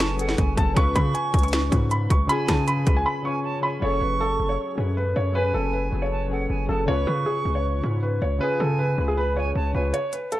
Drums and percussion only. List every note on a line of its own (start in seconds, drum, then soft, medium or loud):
0.00 finger snap loud
0.00 snare loud
0.00 closed hi-hat medium
0.19 closed hi-hat medium
0.29 snare medium
0.38 kick loud
0.38 closed hi-hat medium
0.57 kick loud
0.57 closed hi-hat loud
0.77 kick loud
0.77 closed hi-hat medium
0.96 kick medium
0.96 closed hi-hat medium
1.15 closed hi-hat medium
1.34 kick loud
1.34 closed hi-hat medium
1.39 closed hi-hat medium
1.43 closed hi-hat medium
1.48 closed hi-hat soft
1.53 finger snap loud
1.53 snare loud
1.53 closed hi-hat medium
1.72 kick loud
1.72 closed hi-hat medium
1.91 closed hi-hat medium
2.10 kick loud
2.10 closed hi-hat loud
2.29 closed hi-hat medium
2.48 finger snap medium
2.48 kick medium
2.48 snare medium
2.48 closed hi-hat medium
2.68 closed hi-hat medium
2.87 kick loud
2.87 closed hi-hat medium
9.94 closed hi-hat medium
10.13 closed hi-hat medium
10.32 closed hi-hat medium